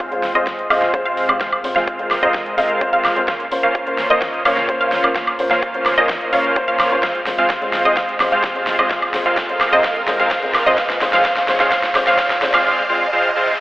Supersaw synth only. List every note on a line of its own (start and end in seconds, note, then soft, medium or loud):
0.00 0.32 G#3 medium
0.00 0.32 C4 medium
0.00 0.32 F4 medium
0.00 0.32 C5 medium
0.00 0.32 F5 medium
0.35 0.68 G#3 loud
0.35 0.68 C4 loud
0.35 0.68 F4 medium
0.35 0.68 C5 medium
0.35 0.68 D#5 loud
0.70 1.03 G#3 medium
0.70 1.03 C4 medium
0.70 1.03 F4 medium
0.70 1.03 C5 medium
0.70 1.03 F5 loud
1.05 1.33 G#3 medium
1.05 1.33 C4 medium
1.05 1.33 F4 medium
1.05 1.33 C5 medium
1.05 1.33 F5 loud
1.41 1.58 G#3 medium
1.41 1.58 C4 medium
1.41 1.58 F4 medium
1.41 1.58 C5 medium
1.41 1.58 F5 medium
1.76 2.20 G#3 medium
1.76 2.20 C4 medium
1.76 2.20 F4 medium
1.76 2.20 C5 medium
1.76 2.20 F5 medium
2.23 2.55 G#3 loud
2.23 2.55 C4 loud
2.23 2.55 F4 loud
2.23 2.55 C5 medium
2.23 2.55 D#5 loud
2.58 2.90 G#3 medium
2.58 2.90 C4 medium
2.58 2.90 F4 medium
2.58 2.90 C5 medium
2.58 2.90 F5 medium
2.93 3.21 G#3 medium
2.93 3.21 C4 medium
2.93 3.21 F4 medium
2.93 3.21 C5 medium
2.93 3.21 F5 loud
3.28 3.45 A#3 medium
3.28 3.45 C#4 medium
3.28 3.45 F4 medium
3.28 3.45 C5 medium
3.28 3.45 F5 medium
3.63 4.07 A#3 medium
3.63 4.07 C#4 medium
3.63 4.07 F4 medium
3.63 4.07 C5 medium
3.63 4.07 F5 medium
4.10 4.43 A#3 loud
4.10 4.43 C#4 loud
4.10 4.43 F4 loud
4.10 4.43 C5 medium
4.10 4.43 D#5 loud
4.45 4.78 A#3 medium
4.45 4.78 C#4 medium
4.45 4.78 F4 medium
4.45 4.78 C5 medium
4.45 4.78 F5 loud
4.80 5.08 A#3 medium
4.80 5.08 C#4 medium
4.80 5.08 F4 medium
4.80 5.08 C5 medium
4.80 5.08 F5 loud
5.16 5.33 A#3 medium
5.16 5.33 C#4 medium
5.16 5.33 F4 medium
5.16 5.33 C5 medium
5.16 5.33 F5 medium
5.51 5.95 A#3 medium
5.51 5.95 C#4 medium
5.51 5.95 F4 medium
5.51 5.95 C5 medium
5.51 5.95 F5 medium
5.98 6.30 A#3 loud
5.98 6.30 C#4 medium
5.98 6.30 F4 medium
5.98 6.30 C5 medium
5.98 6.30 D#5 loud
6.33 6.65 A#3 medium
6.33 6.65 C#4 medium
6.33 6.65 F4 medium
6.33 6.65 C5 medium
6.33 6.65 F5 loud
6.68 6.96 A#3 medium
6.68 6.96 C#4 medium
6.68 6.96 F4 medium
6.68 6.96 C5 medium
6.68 6.96 F5 loud
7.03 7.20 G#3 medium
7.03 7.20 C4 medium
7.03 7.20 F4 medium
7.03 7.20 C5 medium
7.03 7.20 F5 medium
7.38 7.82 G#3 medium
7.38 7.82 C4 medium
7.38 7.82 F4 medium
7.38 7.82 C5 medium
7.38 7.82 F5 medium
7.85 7.95 G#3 loud
7.85 7.95 C4 medium
7.85 7.95 F4 medium
7.85 7.95 C5 medium
7.85 7.95 D#5 loud
7.97 8.14 G#3 medium
7.97 8.14 C4 medium
7.97 8.14 F4 medium
7.97 8.14 C5 medium
7.97 8.14 F5 medium
8.32 8.76 G#3 medium
8.32 8.76 C4 medium
8.32 8.76 F4 medium
8.32 8.76 C5 medium
8.32 8.76 F5 medium
8.79 8.89 G#3 loud
8.79 8.89 C4 medium
8.79 8.89 F4 medium
8.79 8.89 C5 medium
8.79 8.89 D#5 loud
8.91 9.08 G#3 medium
8.91 9.08 C4 medium
8.91 9.08 F4 medium
8.91 9.08 C5 medium
8.91 9.08 F5 medium
9.26 9.70 G#3 medium
9.26 9.70 C4 medium
9.26 9.70 F4 medium
9.26 9.70 C5 medium
9.26 9.70 F5 medium
9.73 9.83 G#3 loud
9.73 9.83 C4 medium
9.73 9.83 F4 medium
9.73 9.83 C5 medium
9.73 9.83 D#5 loud
9.84 10.02 G#3 medium
9.84 10.02 C4 medium
9.84 10.02 F4 medium
9.84 10.02 C5 medium
9.84 10.02 F5 medium
10.19 10.64 G#3 medium
10.19 10.64 C4 medium
10.19 10.64 F4 medium
10.19 10.64 C5 medium
10.19 10.64 F5 medium
10.66 10.76 G#3 loud
10.66 10.76 C4 medium
10.66 10.76 F4 medium
10.66 10.76 C5 medium
10.66 10.76 D#5 loud
10.78 10.95 G#3 medium
10.78 10.95 C4 medium
10.78 10.95 F4 medium
10.78 10.95 C5 medium
10.78 10.95 F5 medium
11.13 11.23 G#3 medium
11.13 11.23 C4 medium
11.13 11.23 F4 medium
11.13 11.23 C5 medium
11.13 11.23 F5 medium
11.25 11.42 G#3 medium
11.25 11.42 C4 medium
11.25 11.42 F4 medium
11.25 11.42 C5 medium
11.25 11.42 F5 medium
11.60 11.70 G#3 medium
11.60 11.70 C4 medium
11.60 11.70 F4 medium
11.60 11.70 C5 medium
11.60 11.70 F5 medium
11.72 11.89 G#3 medium
11.72 11.89 C4 medium
11.72 11.89 F4 medium
11.72 11.89 C5 medium
11.72 11.89 F5 medium
12.07 12.17 G#3 medium
12.07 12.17 C4 medium
12.07 12.17 F4 medium
12.07 12.17 C5 medium
12.07 12.17 F5 medium
12.19 12.36 G#3 medium
12.19 12.36 C4 medium
12.19 12.36 F4 medium
12.19 12.36 C5 medium
12.19 12.36 F5 medium
12.54 12.64 G#3 medium
12.54 12.64 C4 medium
12.54 12.64 F4 medium
12.54 12.64 C5 medium
12.54 12.64 F5 medium
12.66 12.83 G#3 medium
12.66 12.83 C4 medium
12.66 12.83 F4 medium
12.66 12.83 C5 medium
12.66 12.83 F5 medium
12.89 13.06 G#3 medium
12.89 13.06 C4 medium
12.89 13.06 F4 medium
12.89 13.06 C5 medium
12.89 13.06 F5 medium
13.13 13.30 G#3 medium
13.13 13.30 C4 medium
13.13 13.30 F4 medium
13.13 13.30 C5 medium
13.13 13.30 F5 loud
13.36 13.53 G#3 medium
13.36 13.53 C4 medium
13.36 13.53 F4 medium
13.36 13.53 C5 medium
13.36 13.53 F5 medium